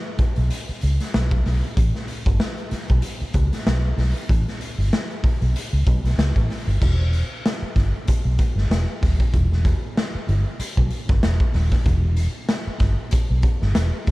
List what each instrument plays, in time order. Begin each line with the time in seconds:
0.18 muted fingered electric bass stroke, kick, closed hi-hat
0.36 fingered electric bass B1, closed hi-hat
0.50 closed hi-hat
0.69 muted fingered electric bass stroke, closed hi-hat
0.81 fingered electric bass C#2, closed hi-hat
1.00 snare, closed hi-hat
1.14 fingered electric bass B1, snare, closed hi-hat
1.31 kick, closed hi-hat
1.46 fingered electric bass B1, snare, open hi-hat
1.64 closed hi-hat
1.77 fingered electric bass A1, kick, closed hi-hat
1.95 snare
2.08 closed hi-hat
2.26 fingered electric bass G1, kick, closed hi-hat
2.40 snare, closed hi-hat
2.58 closed hi-hat
2.71 muted fingered electric bass stroke, snare, closed hi-hat
2.88 fingered electric bass B1, kick, closed hi-hat
3.02 closed hi-hat
3.21 muted fingered electric bass stroke, closed hi-hat
3.33 fingered electric bass C#2, kick, closed hi-hat
3.53 snare, closed hi-hat
3.66 fingered electric bass B1, snare, closed hi-hat
3.98 fingered electric bass B1, snare, open hi-hat
4.16 closed hi-hat
4.29 fingered electric bass A1, kick, closed hi-hat
4.48 snare, closed hi-hat
4.61 closed hi-hat
4.78 fingered electric bass G1, closed hi-hat
4.93 snare, closed hi-hat
5.11 closed hi-hat
5.24 muted fingered electric bass stroke, kick, open hi-hat
5.42 fingered electric bass B1, closed hi-hat
5.56 closed hi-hat
5.73 fingered electric bass C#2, closed hi-hat
5.86 fingered electric bass B1, kick, closed hi-hat
6.04 fingered electric bass B1, snare, closed hi-hat
6.18 fingered electric bass C#2, snare, closed hi-hat
6.36 fingered electric bass A1, kick, closed hi-hat
6.50 snare, open hi-hat
6.67 fingered electric bass G1, closed hi-hat
6.82 fingered electric bass E1, kick, crash
7.13 closed hi-hat
7.46 snare, closed hi-hat
7.62 muted fingered electric bass stroke
7.76 fingered electric bass G1, kick, snare, closed hi-hat
8.07 muted fingered electric bass stroke, kick, closed hi-hat
8.25 fingered electric bass B1
8.38 kick, closed hi-hat
8.56 fingered electric bass G1, snare
8.70 fingered electric bass E1, snare, closed hi-hat
9.03 fingered electric bass D#1, kick, snare, open hi-hat
9.20 kick
9.34 fingered electric bass E1, kick, closed hi-hat
9.52 snare
9.65 kick, closed hi-hat
9.97 snare, closed hi-hat
10.15 muted fingered electric bass stroke
10.29 fingered electric bass G1, closed hi-hat
10.59 muted fingered electric bass stroke, closed hi-hat
10.77 fingered electric bass B1, kick
10.90 closed hi-hat
11.09 fingered electric bass G1, kick, snare
11.23 fingered electric bass E1, snare, closed hi-hat
11.40 kick
11.54 fingered electric bass D#1, snare, open hi-hat
11.72 kick, snare
11.86 fingered electric bass E1, kick, closed hi-hat
12.16 closed hi-hat
12.49 snare, closed hi-hat
12.67 muted fingered electric bass stroke
12.80 fingered electric bass G1, kick, snare, closed hi-hat
13.11 muted fingered electric bass stroke, kick, closed hi-hat
13.30 fingered electric bass B1
13.42 kick, closed hi-hat
13.62 fingered electric bass G1, snare
13.75 fingered electric bass E1, snare, closed hi-hat
14.07 fingered electric bass D#1, kick, snare, open hi-hat